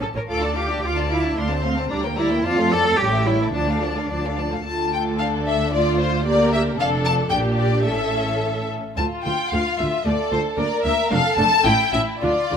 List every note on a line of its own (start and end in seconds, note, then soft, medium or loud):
0.00 0.06 A1 medium
0.00 0.06 C#4 medium
0.00 0.07 A4 medium
0.15 0.20 A1 soft
0.15 0.20 C#4 soft
0.15 0.21 A#4 medium
0.15 0.21 C#5 soft
0.28 0.77 D2 medium
0.28 0.41 F4 soft
0.28 0.56 A4 medium
0.28 0.42 F5 soft
0.28 0.42 D6 soft
0.43 0.56 D4 soft
0.43 0.57 D5 soft
0.43 0.56 A5 soft
0.56 0.70 F4 soft
0.56 0.83 G4 medium
0.56 0.70 F5 soft
0.56 0.70 D6 soft
0.69 0.83 D4 soft
0.69 0.84 D5 soft
0.69 0.83 A5 soft
0.83 1.31 D2 medium
0.83 1.11 F4 medium
0.83 0.96 F4 medium
0.83 0.97 F5 soft
0.83 0.96 D6 soft
0.97 1.11 D4 soft
0.97 1.11 D5 soft
0.97 1.11 A5 soft
1.10 1.37 E4 medium
1.10 1.24 F4 soft
1.10 1.25 F5 soft
1.10 1.24 D6 soft
1.23 1.37 D4 soft
1.23 1.38 D5 soft
1.23 1.37 A5 soft
1.37 1.84 D2 medium
1.37 1.50 A3 soft
1.37 1.64 D4 medium
1.37 1.51 F5 medium
1.37 1.50 C6 medium
1.51 1.64 C4 soft
1.51 1.65 C5 medium
1.51 1.64 A5 soft
1.63 1.77 A3 soft
1.63 1.90 C4 medium
1.63 1.78 F5 medium
1.63 1.77 C6 medium
1.76 1.90 C4 medium
1.76 1.92 C5 soft
1.76 1.90 A5 medium
1.89 2.38 D2 medium
1.89 2.02 G3 medium
1.89 1.98 D4 medium
1.89 2.04 D5 soft
1.89 2.03 A#5 medium
2.04 2.17 A#3 medium
2.04 2.18 A#4 medium
2.04 2.17 G5 medium
2.16 2.30 G3 medium
2.16 2.43 E4 medium
2.16 2.31 D5 medium
2.16 2.30 A#5 medium
2.30 2.44 A#3 medium
2.30 2.45 A#4 medium
2.30 2.43 G5 soft
2.43 2.92 F2 medium
2.43 2.56 F3 medium
2.43 2.70 F4 medium
2.43 2.57 D5 medium
2.43 2.56 A5 medium
2.58 2.71 A3 medium
2.58 2.71 A4 medium
2.58 2.71 F5 medium
2.70 2.84 F3 medium
2.70 2.98 A4 loud
2.70 2.85 D5 medium
2.70 2.85 A5 medium
2.84 2.98 A3 medium
2.84 2.98 A4 medium
2.84 2.98 F5 medium
2.98 3.46 A1 medium
2.98 3.10 G3 medium
2.98 3.25 G4 medium
2.98 3.12 C#5 medium
2.98 3.11 G5 medium
3.12 3.25 A3 medium
3.12 3.26 A4 medium
3.12 3.26 E5 medium
3.24 3.39 G3 medium
3.24 3.52 E4 medium
3.24 3.40 C#5 medium
3.24 3.39 G5 medium
3.38 3.53 A3 medium
3.38 3.54 A4 soft
3.38 3.54 E5 soft
3.52 4.03 D2 medium
3.52 3.65 F3 medium
3.52 4.36 D4 medium
3.52 3.67 D5 soft
3.52 3.67 A5 medium
3.66 3.81 A3 medium
3.66 3.82 A4 soft
3.66 3.82 F5 soft
3.80 3.95 F3 soft
3.80 3.96 D5 medium
3.80 3.96 A5 medium
3.94 4.09 A3 soft
3.94 4.11 A4 soft
3.94 4.10 F5 soft
4.09 4.59 D2 medium
4.09 4.22 F3 soft
4.09 4.23 D5 soft
4.09 4.23 A5 soft
4.23 4.37 A3 soft
4.23 4.38 A4 soft
4.23 4.38 F5 soft
4.37 4.51 F3 soft
4.37 4.52 D5 soft
4.37 4.52 A5 soft
4.50 4.63 A3 soft
4.50 4.65 A4 soft
4.50 4.66 F5 soft
4.65 6.76 D2 medium
4.65 6.76 D3 soft
4.65 5.69 A3 soft
4.65 5.16 F4 soft
4.65 5.70 A4 medium
4.65 4.91 A5 medium
4.93 5.01 G5 medium
5.19 5.73 D4 medium
5.19 5.27 F5 medium
5.47 5.73 E5 medium
5.73 6.26 A3 medium
5.73 6.27 F4 medium
5.73 6.00 D5 medium
6.00 6.26 C5 medium
6.26 6.79 A#3 medium
6.26 6.79 G4 medium
6.26 6.79 A#4 medium
6.26 6.53 D5 medium
6.54 6.62 E5 medium
6.79 7.29 F1 medium
6.79 7.29 F2 medium
6.79 7.29 D4 medium
6.79 7.29 A4 medium
6.79 7.32 A4 medium
6.79 6.88 F5 medium
7.05 7.13 A5 loud
7.30 7.87 A#1 medium
7.30 7.87 A#2 medium
7.30 7.86 D4 medium
7.30 7.87 G4 medium
7.30 7.86 G4 medium
7.30 7.38 G5 medium
7.59 7.86 D5 medium
7.86 8.77 A1 medium
7.86 8.77 A2 medium
7.86 8.77 C#4 medium
7.86 8.77 A4 soft
7.86 8.69 A4 medium
7.86 8.68 E5 medium
8.97 9.05 D2 medium
8.97 9.06 D2 medium
8.97 9.05 A3 medium
8.97 10.02 F4 medium
8.97 9.05 F4 medium
8.97 9.05 A5 medium
9.24 9.32 D2 medium
9.24 9.33 D2 medium
9.24 9.33 A3 soft
9.24 9.33 F4 medium
9.24 9.51 G5 medium
9.51 9.60 D2 medium
9.51 9.60 A3 soft
9.51 9.60 F4 medium
9.51 9.79 F5 medium
9.78 9.86 D2 medium
9.78 9.88 D2 medium
9.78 9.87 A3 soft
9.78 9.87 F4 soft
9.78 10.06 E5 medium
10.05 10.13 D2 medium
10.05 10.14 D2 medium
10.05 10.13 A3 medium
10.05 10.14 F4 medium
10.05 10.57 A4 medium
10.05 10.33 D5 medium
10.31 10.39 D2 medium
10.31 10.40 D2 medium
10.31 10.39 A3 medium
10.31 10.39 F4 medium
10.31 10.41 C5 medium
10.57 10.65 D2 medium
10.57 10.66 D2 medium
10.57 10.66 A#3 medium
10.57 10.65 D4 medium
10.57 11.11 A#4 medium
10.57 10.84 D5 medium
10.84 10.93 D2 medium
10.84 10.93 A#3 medium
10.84 10.92 D4 medium
10.84 11.11 E5 medium
11.10 11.20 F1 medium
11.10 11.19 F2 medium
11.10 11.18 A3 medium
11.10 11.18 D4 medium
11.10 11.66 A4 medium
11.10 11.38 F5 loud
11.37 11.46 F1 medium
11.37 11.47 F2 medium
11.37 11.46 A3 medium
11.37 11.45 D4 medium
11.37 11.65 A5 loud
11.64 11.74 A1 medium
11.64 11.74 A2 medium
11.64 11.72 C#4 medium
11.64 11.72 E4 medium
11.64 12.22 E4 medium
11.64 11.93 G5 loud
11.92 12.02 A1 medium
11.92 12.02 A2 medium
11.92 12.00 C#4 medium
11.92 12.01 E4 medium
11.92 12.01 E5 medium
12.21 12.31 D2 medium
12.21 12.31 D3 medium
12.21 12.30 D4 medium
12.21 12.30 F4 medium
12.21 12.57 F4 medium
12.21 12.57 D5 medium
12.51 12.57 D2 medium
12.51 12.57 D3 medium
12.51 12.57 D4 medium
12.51 12.57 F4 medium